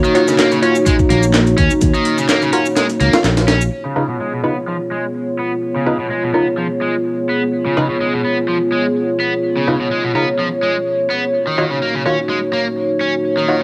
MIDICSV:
0, 0, Header, 1, 6, 480
1, 0, Start_track
1, 0, Tempo, 476190
1, 1832, Time_signature, 4, 2, 24, 8
1, 13743, End_track
2, 0, Start_track
2, 0, Title_t, "Analog synth pad"
2, 0, Program_c, 0, 89
2, 0, Note_on_c, 0, 58, 89
2, 0, Note_on_c, 0, 63, 76
2, 0, Note_on_c, 0, 66, 82
2, 0, Note_on_c, 0, 73, 93
2, 3709, Note_off_c, 0, 66, 0
2, 3710, Note_off_c, 0, 58, 0
2, 3710, Note_off_c, 0, 63, 0
2, 3711, Note_off_c, 0, 73, 0
2, 3748, Note_on_c, 0, 59, 82
2, 3748, Note_on_c, 0, 65, 78
2, 3748, Note_on_c, 0, 68, 77
2, 3748, Note_on_c, 0, 73, 87
2, 11389, Note_off_c, 0, 65, 0
2, 11389, Note_off_c, 0, 68, 0
2, 11390, Note_off_c, 0, 59, 0
2, 11429, Note_on_c, 0, 58, 88
2, 11430, Note_on_c, 0, 63, 80
2, 11430, Note_on_c, 0, 66, 80
2, 13743, Note_off_c, 0, 58, 0
2, 13743, Note_off_c, 0, 63, 0
2, 13743, Note_off_c, 0, 66, 0
2, 13743, Note_off_c, 0, 73, 0
2, 13743, End_track
3, 0, Start_track
3, 0, Title_t, "Synth stab"
3, 0, Program_c, 1, 62
3, 149, Note_on_c, 1, 66, 86
3, 150, Note_on_c, 1, 65, 100
3, 150, Note_on_c, 1, 73, 109
3, 222, Note_off_c, 1, 65, 0
3, 222, Note_off_c, 1, 66, 0
3, 222, Note_off_c, 1, 73, 0
3, 630, Note_on_c, 1, 73, 96
3, 631, Note_on_c, 1, 65, 87
3, 631, Note_on_c, 1, 66, 77
3, 745, Note_off_c, 1, 65, 0
3, 745, Note_off_c, 1, 66, 0
3, 745, Note_off_c, 1, 73, 0
3, 2550, Note_on_c, 1, 65, 82
3, 2550, Note_on_c, 1, 66, 77
3, 2550, Note_on_c, 1, 70, 91
3, 2665, Note_off_c, 1, 65, 0
3, 2665, Note_off_c, 1, 66, 0
3, 2665, Note_off_c, 1, 70, 0
3, 3160, Note_on_c, 1, 65, 91
3, 3161, Note_on_c, 1, 66, 84
3, 3161, Note_on_c, 1, 77, 98
3, 3220, Note_off_c, 1, 65, 0
3, 3221, Note_off_c, 1, 66, 0
3, 3221, Note_off_c, 1, 77, 0
3, 3991, Note_on_c, 1, 49, 91
3, 3991, Note_on_c, 1, 63, 81
3, 3991, Note_on_c, 1, 65, 87
3, 3991, Note_on_c, 1, 71, 99
3, 4062, Note_off_c, 1, 49, 0
3, 4062, Note_off_c, 1, 63, 0
3, 4062, Note_off_c, 1, 65, 0
3, 4062, Note_off_c, 1, 71, 0
3, 4471, Note_on_c, 1, 49, 78
3, 4471, Note_on_c, 1, 65, 70
3, 4471, Note_on_c, 1, 71, 89
3, 4472, Note_on_c, 1, 63, 73
3, 4585, Note_off_c, 1, 49, 0
3, 4585, Note_off_c, 1, 63, 0
3, 4585, Note_off_c, 1, 65, 0
3, 4585, Note_off_c, 1, 71, 0
3, 5910, Note_on_c, 1, 49, 84
3, 5911, Note_on_c, 1, 63, 71
3, 5911, Note_on_c, 1, 65, 75
3, 5911, Note_on_c, 1, 71, 93
3, 5982, Note_off_c, 1, 49, 0
3, 5982, Note_off_c, 1, 63, 0
3, 5982, Note_off_c, 1, 65, 0
3, 5982, Note_off_c, 1, 71, 0
3, 6391, Note_on_c, 1, 49, 73
3, 6391, Note_on_c, 1, 63, 68
3, 6391, Note_on_c, 1, 65, 67
3, 6391, Note_on_c, 1, 70, 81
3, 6505, Note_off_c, 1, 49, 0
3, 6505, Note_off_c, 1, 63, 0
3, 6505, Note_off_c, 1, 65, 0
3, 6505, Note_off_c, 1, 70, 0
3, 7831, Note_on_c, 1, 49, 89
3, 7831, Note_on_c, 1, 63, 82
3, 7831, Note_on_c, 1, 65, 86
3, 7831, Note_on_c, 1, 71, 107
3, 7902, Note_off_c, 1, 49, 0
3, 7902, Note_off_c, 1, 63, 0
3, 7902, Note_off_c, 1, 71, 0
3, 7903, Note_off_c, 1, 65, 0
3, 9753, Note_on_c, 1, 49, 86
3, 9753, Note_on_c, 1, 63, 76
3, 9753, Note_on_c, 1, 65, 78
3, 9753, Note_on_c, 1, 71, 95
3, 9823, Note_off_c, 1, 49, 0
3, 9823, Note_off_c, 1, 63, 0
3, 9823, Note_off_c, 1, 65, 0
3, 9823, Note_off_c, 1, 71, 0
3, 10232, Note_on_c, 1, 63, 69
3, 10232, Note_on_c, 1, 70, 79
3, 10233, Note_on_c, 1, 49, 79
3, 10233, Note_on_c, 1, 65, 69
3, 10346, Note_off_c, 1, 49, 0
3, 10346, Note_off_c, 1, 63, 0
3, 10346, Note_off_c, 1, 65, 0
3, 10346, Note_off_c, 1, 70, 0
3, 11672, Note_on_c, 1, 51, 92
3, 11672, Note_on_c, 1, 65, 89
3, 11673, Note_on_c, 1, 66, 91
3, 11673, Note_on_c, 1, 73, 99
3, 11743, Note_off_c, 1, 51, 0
3, 11743, Note_off_c, 1, 65, 0
3, 11743, Note_off_c, 1, 66, 0
3, 11743, Note_off_c, 1, 73, 0
3, 12152, Note_on_c, 1, 66, 72
3, 12153, Note_on_c, 1, 51, 80
3, 12153, Note_on_c, 1, 65, 74
3, 12153, Note_on_c, 1, 73, 88
3, 12266, Note_off_c, 1, 51, 0
3, 12266, Note_off_c, 1, 65, 0
3, 12266, Note_off_c, 1, 66, 0
3, 12266, Note_off_c, 1, 73, 0
3, 13592, Note_on_c, 1, 51, 84
3, 13592, Note_on_c, 1, 73, 94
3, 13593, Note_on_c, 1, 65, 78
3, 13593, Note_on_c, 1, 66, 79
3, 13663, Note_off_c, 1, 51, 0
3, 13663, Note_off_c, 1, 65, 0
3, 13663, Note_off_c, 1, 66, 0
3, 13663, Note_off_c, 1, 73, 0
3, 13743, End_track
4, 0, Start_track
4, 0, Title_t, "Overdriven electric guitar"
4, 0, Program_c, 2, 29
4, 45, Note_on_c, 2, 51, 78
4, 270, Note_off_c, 2, 51, 0
4, 284, Note_on_c, 2, 49, 75
4, 352, Note_off_c, 2, 49, 0
4, 392, Note_on_c, 2, 58, 82
4, 510, Note_off_c, 2, 58, 0
4, 523, Note_on_c, 2, 49, 78
4, 591, Note_off_c, 2, 49, 0
4, 630, Note_on_c, 2, 61, 74
4, 755, Note_off_c, 2, 61, 0
4, 870, Note_on_c, 2, 56, 74
4, 954, Note_off_c, 2, 56, 0
4, 1111, Note_on_c, 2, 58, 104
4, 1236, Note_off_c, 2, 58, 0
4, 1589, Note_on_c, 2, 61, 77
4, 1715, Note_off_c, 2, 61, 0
4, 1961, Note_on_c, 2, 51, 77
4, 2189, Note_off_c, 2, 51, 0
4, 2202, Note_on_c, 2, 49, 75
4, 2271, Note_off_c, 2, 49, 0
4, 2309, Note_on_c, 2, 58, 82
4, 2428, Note_off_c, 2, 58, 0
4, 2441, Note_on_c, 2, 49, 77
4, 2511, Note_off_c, 2, 49, 0
4, 2550, Note_on_c, 2, 61, 77
4, 2675, Note_off_c, 2, 61, 0
4, 2790, Note_on_c, 2, 56, 76
4, 2874, Note_off_c, 2, 56, 0
4, 3029, Note_on_c, 2, 58, 102
4, 3154, Note_off_c, 2, 58, 0
4, 3509, Note_on_c, 2, 61, 80
4, 3634, Note_off_c, 2, 61, 0
4, 3884, Note_on_c, 2, 49, 69
4, 4110, Note_off_c, 2, 49, 0
4, 4122, Note_on_c, 2, 47, 68
4, 4191, Note_off_c, 2, 47, 0
4, 4232, Note_on_c, 2, 56, 67
4, 4350, Note_off_c, 2, 56, 0
4, 4365, Note_on_c, 2, 47, 69
4, 4433, Note_off_c, 2, 47, 0
4, 4473, Note_on_c, 2, 59, 65
4, 4596, Note_off_c, 2, 59, 0
4, 4713, Note_on_c, 2, 53, 70
4, 4795, Note_off_c, 2, 53, 0
4, 4953, Note_on_c, 2, 56, 83
4, 5076, Note_off_c, 2, 56, 0
4, 5434, Note_on_c, 2, 59, 68
4, 5557, Note_off_c, 2, 59, 0
4, 5804, Note_on_c, 2, 49, 66
4, 6030, Note_off_c, 2, 49, 0
4, 6043, Note_on_c, 2, 47, 68
4, 6112, Note_off_c, 2, 47, 0
4, 6152, Note_on_c, 2, 56, 73
4, 6270, Note_off_c, 2, 56, 0
4, 6282, Note_on_c, 2, 47, 71
4, 6351, Note_off_c, 2, 47, 0
4, 6390, Note_on_c, 2, 59, 66
4, 6515, Note_off_c, 2, 59, 0
4, 6629, Note_on_c, 2, 53, 70
4, 6713, Note_off_c, 2, 53, 0
4, 6869, Note_on_c, 2, 56, 84
4, 6994, Note_off_c, 2, 56, 0
4, 7351, Note_on_c, 2, 59, 67
4, 7475, Note_off_c, 2, 59, 0
4, 7721, Note_on_c, 2, 49, 71
4, 7949, Note_off_c, 2, 49, 0
4, 7959, Note_on_c, 2, 47, 70
4, 8030, Note_off_c, 2, 47, 0
4, 8069, Note_on_c, 2, 56, 68
4, 8188, Note_off_c, 2, 56, 0
4, 8200, Note_on_c, 2, 47, 65
4, 8270, Note_off_c, 2, 47, 0
4, 8312, Note_on_c, 2, 59, 64
4, 8436, Note_off_c, 2, 59, 0
4, 8551, Note_on_c, 2, 53, 71
4, 8634, Note_off_c, 2, 53, 0
4, 8790, Note_on_c, 2, 56, 84
4, 8915, Note_off_c, 2, 56, 0
4, 9271, Note_on_c, 2, 59, 69
4, 9395, Note_off_c, 2, 59, 0
4, 9642, Note_on_c, 2, 49, 70
4, 9869, Note_off_c, 2, 49, 0
4, 9881, Note_on_c, 2, 47, 68
4, 9951, Note_off_c, 2, 47, 0
4, 9990, Note_on_c, 2, 56, 73
4, 10109, Note_off_c, 2, 56, 0
4, 10122, Note_on_c, 2, 47, 68
4, 10191, Note_off_c, 2, 47, 0
4, 10233, Note_on_c, 2, 59, 67
4, 10356, Note_off_c, 2, 59, 0
4, 10474, Note_on_c, 2, 53, 72
4, 10555, Note_off_c, 2, 53, 0
4, 10712, Note_on_c, 2, 56, 83
4, 10836, Note_off_c, 2, 56, 0
4, 11190, Note_on_c, 2, 59, 71
4, 11315, Note_off_c, 2, 59, 0
4, 11563, Note_on_c, 2, 51, 68
4, 11789, Note_off_c, 2, 51, 0
4, 11802, Note_on_c, 2, 49, 69
4, 11871, Note_off_c, 2, 49, 0
4, 11913, Note_on_c, 2, 58, 70
4, 12030, Note_off_c, 2, 58, 0
4, 12046, Note_on_c, 2, 49, 68
4, 12113, Note_off_c, 2, 49, 0
4, 12153, Note_on_c, 2, 61, 68
4, 12276, Note_off_c, 2, 61, 0
4, 12392, Note_on_c, 2, 56, 71
4, 12474, Note_off_c, 2, 56, 0
4, 12633, Note_on_c, 2, 58, 91
4, 12756, Note_off_c, 2, 58, 0
4, 13112, Note_on_c, 2, 61, 71
4, 13236, Note_off_c, 2, 61, 0
4, 13481, Note_on_c, 2, 51, 69
4, 13709, Note_off_c, 2, 51, 0
4, 13743, End_track
5, 0, Start_track
5, 0, Title_t, "Fingered electric bass"
5, 0, Program_c, 3, 33
5, 1112, Note_on_c, 3, 34, 81
5, 1551, Note_off_c, 3, 34, 0
5, 1591, Note_on_c, 3, 39, 98
5, 1691, Note_off_c, 3, 39, 0
5, 1830, Note_on_c, 3, 39, 95
5, 1931, Note_off_c, 3, 39, 0
5, 3031, Note_on_c, 3, 37, 78
5, 3131, Note_off_c, 3, 37, 0
5, 3268, Note_on_c, 3, 34, 94
5, 3709, Note_off_c, 3, 34, 0
5, 13743, End_track
6, 0, Start_track
6, 0, Title_t, "Drums"
6, 41, Note_on_c, 9, 82, 29
6, 142, Note_off_c, 9, 82, 0
6, 152, Note_on_c, 9, 42, 66
6, 253, Note_off_c, 9, 42, 0
6, 280, Note_on_c, 9, 82, 58
6, 282, Note_on_c, 9, 38, 52
6, 381, Note_off_c, 9, 82, 0
6, 383, Note_off_c, 9, 38, 0
6, 389, Note_on_c, 9, 39, 99
6, 389, Note_on_c, 9, 82, 50
6, 391, Note_on_c, 9, 38, 114
6, 391, Note_on_c, 9, 42, 86
6, 489, Note_off_c, 9, 39, 0
6, 489, Note_off_c, 9, 82, 0
6, 492, Note_off_c, 9, 38, 0
6, 492, Note_off_c, 9, 42, 0
6, 520, Note_on_c, 9, 82, 33
6, 522, Note_on_c, 9, 42, 41
6, 620, Note_off_c, 9, 82, 0
6, 623, Note_off_c, 9, 42, 0
6, 631, Note_on_c, 9, 42, 66
6, 732, Note_off_c, 9, 42, 0
6, 759, Note_on_c, 9, 82, 62
6, 860, Note_off_c, 9, 82, 0
6, 868, Note_on_c, 9, 82, 51
6, 871, Note_on_c, 9, 36, 106
6, 872, Note_on_c, 9, 42, 90
6, 969, Note_off_c, 9, 82, 0
6, 972, Note_off_c, 9, 36, 0
6, 973, Note_off_c, 9, 42, 0
6, 999, Note_on_c, 9, 82, 30
6, 1002, Note_on_c, 9, 36, 84
6, 1100, Note_off_c, 9, 82, 0
6, 1103, Note_off_c, 9, 36, 0
6, 1112, Note_on_c, 9, 42, 70
6, 1213, Note_off_c, 9, 42, 0
6, 1238, Note_on_c, 9, 82, 60
6, 1339, Note_off_c, 9, 82, 0
6, 1348, Note_on_c, 9, 39, 106
6, 1348, Note_on_c, 9, 82, 53
6, 1351, Note_on_c, 9, 38, 112
6, 1351, Note_on_c, 9, 42, 87
6, 1448, Note_off_c, 9, 39, 0
6, 1448, Note_off_c, 9, 82, 0
6, 1452, Note_off_c, 9, 38, 0
6, 1452, Note_off_c, 9, 42, 0
6, 1478, Note_on_c, 9, 82, 31
6, 1483, Note_on_c, 9, 42, 45
6, 1579, Note_off_c, 9, 82, 0
6, 1584, Note_off_c, 9, 42, 0
6, 1591, Note_on_c, 9, 36, 96
6, 1591, Note_on_c, 9, 42, 72
6, 1692, Note_off_c, 9, 36, 0
6, 1692, Note_off_c, 9, 42, 0
6, 1719, Note_on_c, 9, 82, 61
6, 1820, Note_off_c, 9, 82, 0
6, 1827, Note_on_c, 9, 82, 49
6, 1830, Note_on_c, 9, 42, 89
6, 1831, Note_on_c, 9, 36, 110
6, 1928, Note_off_c, 9, 82, 0
6, 1931, Note_off_c, 9, 36, 0
6, 1931, Note_off_c, 9, 42, 0
6, 1958, Note_on_c, 9, 82, 30
6, 2058, Note_off_c, 9, 82, 0
6, 2069, Note_on_c, 9, 42, 66
6, 2170, Note_off_c, 9, 42, 0
6, 2198, Note_on_c, 9, 82, 58
6, 2299, Note_off_c, 9, 82, 0
6, 2308, Note_on_c, 9, 39, 95
6, 2308, Note_on_c, 9, 82, 50
6, 2309, Note_on_c, 9, 38, 108
6, 2309, Note_on_c, 9, 42, 81
6, 2408, Note_off_c, 9, 39, 0
6, 2408, Note_off_c, 9, 82, 0
6, 2410, Note_off_c, 9, 38, 0
6, 2410, Note_off_c, 9, 42, 0
6, 2439, Note_on_c, 9, 82, 31
6, 2540, Note_off_c, 9, 82, 0
6, 2549, Note_on_c, 9, 42, 70
6, 2650, Note_off_c, 9, 42, 0
6, 2680, Note_on_c, 9, 82, 62
6, 2781, Note_off_c, 9, 82, 0
6, 2788, Note_on_c, 9, 82, 52
6, 2789, Note_on_c, 9, 38, 97
6, 2789, Note_on_c, 9, 42, 77
6, 2889, Note_off_c, 9, 82, 0
6, 2890, Note_off_c, 9, 38, 0
6, 2890, Note_off_c, 9, 42, 0
6, 2920, Note_on_c, 9, 82, 33
6, 2921, Note_on_c, 9, 42, 38
6, 3020, Note_off_c, 9, 82, 0
6, 3022, Note_off_c, 9, 42, 0
6, 3030, Note_on_c, 9, 42, 66
6, 3131, Note_off_c, 9, 42, 0
6, 3160, Note_on_c, 9, 82, 63
6, 3161, Note_on_c, 9, 38, 117
6, 3261, Note_off_c, 9, 38, 0
6, 3261, Note_off_c, 9, 82, 0
6, 3269, Note_on_c, 9, 38, 105
6, 3269, Note_on_c, 9, 42, 80
6, 3270, Note_on_c, 9, 39, 101
6, 3270, Note_on_c, 9, 82, 55
6, 3370, Note_off_c, 9, 38, 0
6, 3370, Note_off_c, 9, 42, 0
6, 3371, Note_off_c, 9, 39, 0
6, 3371, Note_off_c, 9, 82, 0
6, 3399, Note_on_c, 9, 38, 96
6, 3399, Note_on_c, 9, 42, 77
6, 3401, Note_on_c, 9, 82, 31
6, 3500, Note_off_c, 9, 38, 0
6, 3500, Note_off_c, 9, 42, 0
6, 3501, Note_off_c, 9, 82, 0
6, 3508, Note_on_c, 9, 38, 109
6, 3508, Note_on_c, 9, 42, 78
6, 3609, Note_off_c, 9, 38, 0
6, 3609, Note_off_c, 9, 42, 0
6, 3640, Note_on_c, 9, 82, 67
6, 3741, Note_off_c, 9, 82, 0
6, 13743, End_track
0, 0, End_of_file